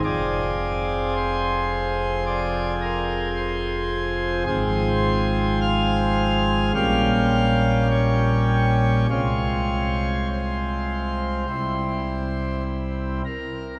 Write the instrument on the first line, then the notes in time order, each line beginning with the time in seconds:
pipe organ
0.04 F1 F2 F3 C4 G#4 D5
1.16 C5
2.27 D5
2.82 A#4
3.37 C5
4.46 G#1 G#2 F3 C4 G#4 C5
5.62 F5
6.75 A#1 A#2 G3 C#4 G4 F5
7.91 C#5
9.10 C2 C3 G#3 C4 F4 C#5
10.32 C5
11.49 C2 C3 G3 C4 E4
13.25 A#4